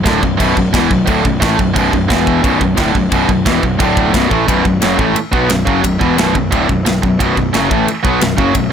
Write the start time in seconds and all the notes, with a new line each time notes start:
0.04 D1 D2 A2 D3, kick, snare, crash
0.21 B0 B1 F#2, kick
0.37 B0 B1 F#2 B2, kick, crash
0.56 B0 B1 F#2, kick
0.73 E1 E2 B2 E3, kick, snare, crash
0.90 B0 B1 F#2, kick
1.07 D1 D2 A2 D3, kick, crash
1.23 B0 B1 F#2, kick
1.41 A1 A2 E3 A3, kick, snare, crash
1.58 B0 B1 F#2, kick
1.74 B0 B1 F#2 B2, kick, crash
1.92 B0 B1 F#2, kick
2.08 E1 E2 B2 E3, kick, snare, crash
2.27 kick
2.41 B0 B1 F#2 B2, kick, crash
2.59 B0 B1 F#2, kick
2.75 D1 D2 A2 D3, kick, snare, crash
2.92 B0 B1 F#2, kick
3.09 B0 B1 F#2 B2, kick, crash
3.27 B0 B1 F#2, kick
3.45 E1 E2 B2 E3, kick, snare, crash
3.61 B0 B1 F#2, kick
3.78 D1 D2 A2 D3, kick, crash
3.97 kick
4.11 B0 B1 F#2 B2, kick, snare, crash
4.28 A1 A2 E3 A3, kick
4.46 B0 B1 F#2 B2, kick, ride bell
4.63 B0 B1 F#2, kick
4.81 F#1 F#2 C#3 F#3, snare, ride bell
4.97 A1 A2 E3 A3, kick
5.14 muted distorted electric guitar stroke, muted picked electric bass stroke, ride bell
5.32 B1 B2 F#3 B3, kick
5.50 B0 B1 F#2, snare, ride bell
5.65 F#1 F#2 C#3 F#3, kick
5.83 B0 B1 F#2, kick, ride bell
6.00 E1 E2 B2 E3, kick
6.17 B0 B1 F#2 B2, snare, ride bell
6.34 B0 B1 F#2, kick
6.52 D1 D2 A2 D3, kick, ride bell
6.69 B0 B1 F#2, kick
6.86 B0 B1 F#2, snare, ride bell
7.03 B0 B1 F#2, kick
7.20 B0 B1 F#2 B2, kick, ride bell
7.36 B0 B1 F#2, kick
7.53 F#1 F#2 C#3 F#3, snare, ride bell
7.70 A1 A2 E3 A3, kick
7.88 muted distorted electric guitar stroke, muted picked electric bass stroke, ride bell
8.03 B1 B2 F#3 B3, kick
8.21 B0 B1 F#2, snare, ride bell
8.37 F#1 F#2 C#3 F#3, kick
8.55 B0 B1 F#2, kick, ride bell